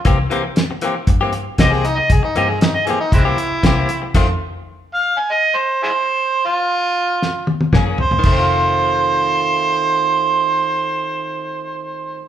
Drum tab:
CC |----------------|----------------|x---------------|----------------|
HH |x-x-x-x-x-x-x-x-|x-x-x-x-x-x-x-x-|x---------------|----------------|
SD |----o-------oo--|----o-------o---|----------------|--------o---o---|
T1 |----------------|----------------|----------------|----------oo----|
T2 |----------------|----------------|----------------|------------o---|
FT |----------------|----------------|----------------|--------------oo|
BD |o-------o---o---|o-------o---o---|o---------------|------------o---|

CC |x---------------|----------------|
HH |----------------|----------------|
SD |----------------|----------------|
T1 |----------------|----------------|
T2 |----------------|----------------|
FT |----------------|----------------|
BD |o---------------|----------------|